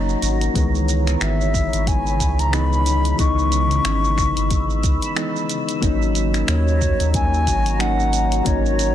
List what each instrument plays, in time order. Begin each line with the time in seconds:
Already playing: analog synth bass F#1, synth keys F#3 A#3 C#4 D#4, ambient pad F#4 C#5 A#5
0.09 shaker
0.22 analog synth bass G#1, closed hi-hat, shaker
0.41 closed hi-hat, shaker
0.54 analog synth bass C#2, ambient pad C#3 C#5 B5, synth keys D#3 E3 G#3 B3, kick, closed hi-hat, shaker
0.75 shaker
0.88 closed hi-hat, shaker
1.07 finger snap, closed hi-hat, shaker
1.21 analog synth bass G#1, flute E5, finger snap, closed hi-hat, shaker
1.41 shaker
1.54 kick, shaker
1.73 analog synth bass G#1, closed hi-hat, shaker
1.87 flute G#5, kick, closed hi-hat, shaker
2.07 shaker
2.20 analog synth bass C#2, kick, closed hi-hat, shaker
2.39 flute A#5, closed hi-hat, shaker
2.52 synth keys E3 G#3 B3 D#4, flute B5, finger snap, closed hi-hat, shaker
2.73 shaker
2.86 closed hi-hat, shaker
3.05 closed hi-hat, shaker
3.17 analog synth bass C#2, synth keys E3 G#3 B3 D#4, flute C#6, ambient pad E6, kick, closed hi-hat, shaker
3.39 shaker
3.52 closed hi-hat, shaker
3.71 closed hi-hat, shaker
3.85 analog synth bass G#1, finger snap, closed hi-hat, shaker
4.04 shaker
4.18 finger snap, kick, shaker
4.37 analog synth bass G#1, closed hi-hat, shaker
4.51 kick, closed hi-hat, shaker
4.70 shaker
4.83 analog synth bass C#2, kick, closed hi-hat, shaker
5.02 closed hi-hat, shaker
5.15 synth keys E3 G#3 B3 D#4, finger snap, closed hi-hat, shaker
5.36 shaker
5.49 closed hi-hat, shaker
5.69 closed hi-hat, shaker
5.80 analog synth bass G#1, synth keys F#3 A#3 C#4 D#4, ambient pad F#4 C#5 A#5, kick, closed hi-hat, shaker
6.02 shaker
6.15 closed hi-hat, shaker
6.34 finger snap, closed hi-hat, shaker
6.48 analog synth bass D#2, flute C#5, finger snap, closed hi-hat, shaker
6.68 shaker
6.81 kick, shaker
7.00 analog synth bass D#2, closed hi-hat, shaker
7.14 flute G#5, kick, closed hi-hat, shaker
7.34 shaker
7.47 analog synth bass G#1, kick, closed hi-hat, shaker
7.66 closed hi-hat, shaker
7.79 synth keys F#3 A#3 C#4 D#4, flute F#5, finger snap, closed hi-hat, shaker
8.00 shaker
8.13 closed hi-hat, shaker
8.32 closed hi-hat, shaker
8.44 analog synth bass G#1, synth keys F#3 A#3 C#4 D#4, flute C#5, kick, closed hi-hat, shaker
8.66 shaker
8.79 closed hi-hat, shaker